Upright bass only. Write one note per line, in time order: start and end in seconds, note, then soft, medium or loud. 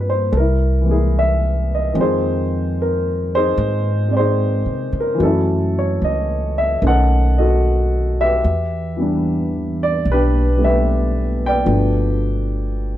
0.00 0.29 G2 medium
0.33 1.91 C2 medium
1.95 3.53 F2 medium
3.58 4.61 G#2 medium
4.66 4.91 C3 medium
4.93 5.18 C#3 medium
5.20 5.97 F#2 medium
6.02 6.78 C#2 medium
6.82 8.40 B1 medium
8.44 10.02 E2 medium
10.05 11.63 B1 medium
11.66 12.97 G1 medium